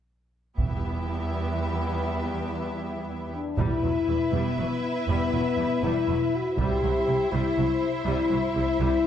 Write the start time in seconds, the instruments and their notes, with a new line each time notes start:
0.57 double bass section E1, cello section E2, french horn section G3 B3, viola section B3 E4, violin section G4 E5, taiko
3.34 french horn section D4
3.58 double bass section E1, cello section E2, viola section G3 E4, french horn section E4, violin section B4 E5, taiko
3.84 double bass section E1, cello section E2, viola section F#3
4.09 double bass section E1, cello section E2, viola section G3
4.32 double bass section E1, cello section E2, viola section G3, french horn section B3
4.58 double bass section E1, cello section E2, viola section F#3
5.08 double bass section E1, cello section E2, viola section G3, french horn section B3
5.33 double bass section E1, cello section E2, viola section F#3
5.57 double bass section E1, cello section E2, viola section G3
5.82 double bass section E1, cello section E2, viola section G3, french horn section E4
6.07 double bass section E1, cello section E2, viola section F#3
6.35 french horn section F#4
6.57 cello section C2, double bass section C2, viola section G3 E4, french horn section G4, violin section C5 E5, taiko
6.83 cello section C2, double bass section C2, viola section F#3
7.07 cello section C2, double bass section C2, viola section G3
7.31 cello section C2, double bass section C2, viola section G3, french horn section E4
7.57 cello section C2, double bass section C2, viola section F#3
8.06 cello section C2, double bass section C2, viola section G3, french horn section E4
8.30 cello section C2, double bass section C2, viola section F#3
8.55 cello section C2, double bass section C2, viola section G3
8.80 cello section C2, double bass section C2, viola section G3, french horn section E4